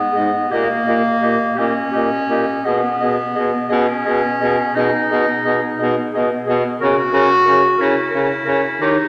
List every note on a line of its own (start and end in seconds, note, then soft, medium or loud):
0.00 0.53 B3 medium
0.13 0.32 G#2 medium
0.13 0.29 G#4 soft
0.13 0.32 D#5 soft
0.49 0.68 A#2 medium
0.49 1.60 A#3 medium
0.49 0.65 G4 soft
0.49 0.68 D#5 medium
0.87 1.03 A#2 medium
0.87 1.03 G4 soft
0.87 1.03 D#5 soft
1.20 1.38 A#2 soft
1.20 1.36 G4 medium
1.20 1.38 D#5 soft
1.55 1.74 A#2 medium
1.55 2.67 C#4 medium
1.55 1.71 G4 soft
1.55 1.75 D#5 soft
1.92 2.10 A#2 soft
1.92 2.08 G4 soft
1.92 2.10 D#5 soft
2.29 2.45 A#2 medium
2.29 2.46 G4 soft
2.29 2.46 D#5 soft
2.64 2.81 B2 medium
2.64 3.70 B3 medium
2.64 2.81 G#4 medium
2.64 2.80 D#5 medium
3.00 3.17 B2 medium
3.00 3.17 G#4 soft
3.00 3.16 D#5 soft
3.35 3.53 B2 medium
3.35 3.51 G#4 soft
3.35 3.51 D#5 soft
3.69 3.87 B2 medium
3.69 4.77 C#4 medium
3.69 3.86 G#4 medium
3.69 3.85 D#5 medium
4.05 4.22 B2 medium
4.05 4.21 G#4 soft
4.05 4.21 D#5 soft
4.40 4.58 B2 medium
4.40 4.57 G#4 soft
4.40 4.56 D#5 medium
4.75 4.91 B2 medium
4.75 6.14 D#4 medium
4.75 4.92 G#4 medium
4.75 4.92 D#5 medium
5.10 5.26 B2 medium
5.10 5.26 G#4 medium
5.10 5.27 D#5 soft
5.45 5.61 B2 medium
5.45 5.60 G#4 medium
5.45 5.60 D#5 soft
5.79 5.96 B2 medium
5.79 5.97 G#4 medium
5.79 5.94 D#5 soft
6.13 6.30 B2 medium
6.13 6.28 G#4 soft
6.13 6.30 D#5 medium
6.46 6.63 B2 medium
6.46 6.62 G#4 medium
6.46 6.63 D#5 medium
6.80 6.97 C#3 medium
6.80 7.82 F#4 loud
6.80 6.95 A#4 medium
6.80 6.97 C#5 medium
7.13 7.29 C#3 medium
7.13 7.28 A#4 medium
7.13 7.29 C#5 medium
7.45 7.62 C#3 medium
7.45 7.61 A#4 medium
7.45 7.63 C#5 medium
7.78 7.95 C#3 medium
7.78 8.83 E4 medium
7.78 7.94 A#4 medium
7.78 7.96 C#5 medium
8.11 8.29 C#3 medium
8.11 8.27 A#4 medium
8.15 8.30 C#5 soft
8.45 8.62 C#3 medium
8.45 8.61 A#4 medium
8.45 8.64 C#5 medium
8.81 8.97 D#3 medium
8.81 9.08 D#4 medium
8.81 8.97 G4 medium
8.81 8.98 C#5 medium